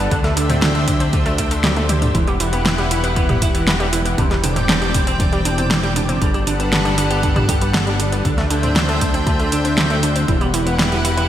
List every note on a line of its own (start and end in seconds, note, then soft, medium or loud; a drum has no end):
0.00 2.11 D4 medium
0.11 2.12 D2 medium
0.11 0.18 D3 medium
0.11 0.21 D3 loud
0.11 2.13 D3 medium
0.11 6.18 G4 medium
0.11 2.13 C5 medium
0.11 2.13 E5 medium
0.11 kick loud
0.11 closed hi-hat medium
0.24 0.36 A3 loud
0.24 0.30 A3 medium
0.24 snare soft
0.24 closed hi-hat soft
0.37 0.46 D3 medium
0.37 0.49 D3 loud
0.37 closed hi-hat medium
0.49 0.56 A3 medium
0.49 0.55 C4 medium
0.49 closed hi-hat medium
0.49 mid tom medium
0.62 0.72 D3 loud
0.62 0.69 F#3 medium
0.62 snare loud
0.62 closed hi-hat medium
0.75 0.87 A3 medium
0.75 0.81 A3 medium
0.75 closed hi-hat soft
0.88 0.94 D3 medium
0.88 0.97 D3 medium
0.88 kick loud
0.88 closed hi-hat medium
1.00 1.10 C4 medium
1.00 1.10 D4 medium
1.00 closed hi-hat medium
1.13 1.19 D3 medium
1.13 1.23 A3 medium
1.13 kick loud
1.13 closed hi-hat medium
1.26 1.36 A3 loud
1.26 1.32 A3 medium
1.26 closed hi-hat soft
1.38 1.48 A3 medium
1.38 1.45 D4 medium
1.38 kick medium
1.38 closed hi-hat medium
1.51 1.61 D3 medium
1.51 1.57 A3 loud
1.51 closed hi-hat medium
1.64 1.70 F#3 medium
1.64 1.76 G3 medium
1.64 snare loud
1.64 closed hi-hat medium
1.64 high tom medium
1.76 1.89 A3 medium
1.76 1.83 A3 medium
1.76 closed hi-hat soft
1.76 high tom medium
1.89 1.99 D3 medium
1.89 2.01 G3 medium
1.89 closed hi-hat medium
1.89 mid tom medium
2.02 2.12 D3 medium
2.02 closed hi-hat medium
2.02 mid tom medium
2.15 4.16 E1 medium
2.15 2.21 E3 medium
2.15 2.21 E3 loud
2.15 6.18 E3 medium
2.15 4.16 E4 medium
2.15 4.16 B4 medium
2.15 4.16 F#5 medium
2.15 kick loud
2.15 closed hi-hat medium
2.27 2.37 G3 loud
2.27 2.34 B3 medium
2.27 closed hi-hat soft
2.40 2.46 E3 loud
2.40 2.50 E3 loud
2.40 closed hi-hat medium
2.53 2.63 B3 medium
2.53 2.59 B3 medium
2.53 closed hi-hat medium
2.65 2.75 E3 loud
2.65 2.72 G3 medium
2.65 snare loud
2.65 closed hi-hat medium
2.78 2.90 G3 loud
2.78 2.85 B3 medium
2.78 closed hi-hat soft
2.91 3.03 E3 loud
2.91 3.01 E3 medium
2.91 closed hi-hat medium
3.04 3.10 B3 medium
3.04 3.13 E4 medium
3.04 closed hi-hat medium
3.16 3.26 E3 loud
3.16 3.26 B3 medium
3.16 kick loud
3.16 closed hi-hat medium
3.29 3.41 G3 medium
3.29 3.36 B3 medium
3.29 closed hi-hat soft
3.29 mid tom medium
3.42 3.48 E3 medium
3.42 3.48 E4 medium
3.42 kick loud
3.42 closed hi-hat loud
3.55 3.64 E3 medium
3.55 3.64 B3 medium
3.55 closed hi-hat medium
3.67 3.73 E3 medium
3.67 3.74 G3 medium
3.67 snare loud
3.67 closed hi-hat medium
3.80 3.90 G3 loud
3.80 3.86 B3 medium
3.80 closed hi-hat soft
3.93 3.99 E3 loud
3.93 4.02 E3 medium
3.93 closed hi-hat medium
4.05 4.15 E3 medium
4.05 4.15 B3 medium
4.05 closed hi-hat medium
4.18 6.19 E1 medium
4.18 4.24 C3 loud
4.18 4.28 D3 loud
4.18 6.20 C4 medium
4.18 6.20 D5 medium
4.18 6.20 G5 medium
4.18 kick loud
4.18 closed hi-hat medium
4.31 4.37 G3 medium
4.31 4.43 G3 loud
4.31 snare soft
4.31 closed hi-hat soft
4.44 4.53 C3 loud
4.44 4.56 D3 loud
4.44 closed hi-hat medium
4.56 4.63 G3 medium
4.56 4.62 C4 medium
4.56 closed hi-hat medium
4.56 mid tom medium
4.69 4.79 D3 loud
4.69 4.75 E3 medium
4.69 snare loud
4.69 closed hi-hat medium
4.82 4.94 G3 medium
4.82 4.88 G3 medium
4.82 closed hi-hat soft
4.94 5.04 C3 medium
4.94 5.00 D3 medium
4.94 kick loud
4.94 closed hi-hat medium
5.07 5.17 C4 medium
5.07 closed hi-hat medium
5.20 5.26 D3 medium
5.20 5.29 G3 medium
5.20 kick loud
5.20 closed hi-hat medium
5.32 5.42 G3 loud
5.32 5.39 G3 medium
5.32 closed hi-hat soft
5.45 5.51 D3 loud
5.45 5.52 C4 medium
5.45 closed hi-hat medium
5.58 5.68 C3 medium
5.58 5.68 C4 medium
5.58 closed hi-hat medium
5.71 5.80 D3 loud
5.71 5.77 E3 medium
5.71 snare loud
5.71 closed hi-hat medium
5.83 5.95 G3 loud
5.83 5.90 G3 medium
5.83 closed hi-hat soft
5.96 6.06 C3 medium
5.96 6.08 D3 loud
5.96 closed hi-hat medium
6.09 6.18 C3 medium
6.09 6.15 C4 medium
6.09 closed hi-hat medium
6.21 8.22 G1 medium
6.21 6.31 D3 loud
6.21 8.23 G3 medium
6.21 6.28 G3 medium
6.21 10.24 D4 medium
6.21 8.23 A4 medium
6.21 8.23 B4 medium
6.21 8.23 F#5 medium
6.21 kick loud
6.21 closed hi-hat medium
6.34 6.46 G3 medium
6.34 6.41 D4 medium
6.34 closed hi-hat soft
6.47 6.53 D3 medium
6.47 6.57 G3 loud
6.47 closed hi-hat medium
6.60 6.69 B3 medium
6.60 6.66 D4 medium
6.60 closed hi-hat medium
6.72 6.78 D3 medium
6.72 6.79 B3 medium
6.72 snare loud
6.72 closed hi-hat medium
6.85 6.95 G3 loud
6.85 6.92 D4 medium
6.85 closed hi-hat soft
6.98 7.04 D3 loud
6.98 7.07 G3 medium
6.98 closed hi-hat medium
7.11 7.20 B3 medium
7.11 7.20 G4 medium
7.11 closed hi-hat medium
7.23 7.33 D3 medium
7.23 7.33 D4 medium
7.23 kick loud
7.23 closed hi-hat medium
7.36 7.48 G3 loud
7.36 7.42 D4 medium
7.36 closed hi-hat soft
7.36 mid tom medium
7.49 7.61 D3 loud
7.49 7.55 G4 medium
7.49 kick loud
7.49 closed hi-hat medium
7.61 7.71 G3 medium
7.61 7.67 B3 medium
7.61 closed hi-hat medium
7.74 7.84 D3 loud
7.74 7.81 B3 medium
7.74 snare loud
7.74 closed hi-hat medium
7.87 7.99 G3 medium
7.87 7.93 D4 medium
7.87 closed hi-hat soft
7.99 8.05 D3 medium
7.99 8.09 G3 medium
7.99 closed hi-hat medium
8.12 8.22 G3 medium
8.12 8.22 B3 medium
8.12 closed hi-hat medium
8.25 10.26 D2 medium
8.25 8.31 D3 medium
8.25 10.26 D3 medium
8.25 8.31 D3 medium
8.25 10.26 C5 medium
8.25 10.26 E5 medium
8.25 10.26 G5 medium
8.25 kick loud
8.25 closed hi-hat soft
8.38 8.47 A3 loud
8.38 8.44 A3 medium
8.38 snare soft
8.38 closed hi-hat soft
8.50 8.56 D3 loud
8.50 8.60 D3 medium
8.50 closed hi-hat medium
8.63 8.70 A3 medium
8.63 8.73 C4 medium
8.63 closed hi-hat soft
8.63 mid tom medium
8.76 8.86 D3 loud
8.76 8.82 F#3 medium
8.76 snare loud
8.76 closed hi-hat medium
8.89 9.01 A3 loud
8.89 8.95 A3 medium
8.89 closed hi-hat soft
9.01 9.11 D3 medium
9.01 9.13 D3 loud
9.01 kick loud
9.01 closed hi-hat medium
9.14 9.20 C4 medium
9.14 9.23 D4 medium
9.14 closed hi-hat medium
9.26 9.36 D3 loud
9.26 9.36 A3 medium
9.26 kick loud
9.26 closed hi-hat medium
9.39 9.46 A3 medium
9.39 9.51 A3 medium
9.39 closed hi-hat soft
9.52 9.58 D3 medium
9.52 9.58 D4 medium
9.52 closed hi-hat medium
9.65 9.74 D3 medium
9.65 9.75 C4 medium
9.65 closed hi-hat medium
9.77 9.83 D3 medium
9.77 9.84 F#3 medium
9.77 snare loud
9.77 closed hi-hat medium
9.90 9.96 A3 medium
9.90 10.00 A3 loud
9.90 closed hi-hat soft
10.03 10.12 D3 medium
10.03 10.09 D3 loud
10.03 closed hi-hat medium
10.16 10.25 D3 medium
10.16 10.25 C4 medium
10.16 closed hi-hat medium
10.28 11.29 E1 medium
10.28 10.35 E3 medium
10.28 10.38 E3 loud
10.28 11.29 E3 medium
10.28 11.29 E4 medium
10.28 11.29 G4 medium
10.28 11.29 B4 medium
10.28 11.29 F#5 medium
10.28 kick loud
10.28 closed hi-hat soft
10.41 10.53 G3 loud
10.41 10.47 B3 medium
10.41 closed hi-hat soft
10.54 10.63 E3 medium
10.54 10.66 E3 loud
10.54 closed hi-hat medium
10.66 10.73 B3 medium
10.66 10.72 B3 medium
10.66 closed hi-hat soft
10.79 10.89 E3 loud
10.79 10.86 G3 medium
10.79 snare loud
10.79 closed hi-hat medium
10.92 11.04 G3 medium
10.92 10.98 B3 medium
10.92 closed hi-hat soft
11.05 11.14 E3 medium
11.05 11.10 E4 medium
11.05 closed hi-hat medium
11.17 11.27 B3 medium
11.17 11.27 E4 medium
11.17 closed hi-hat medium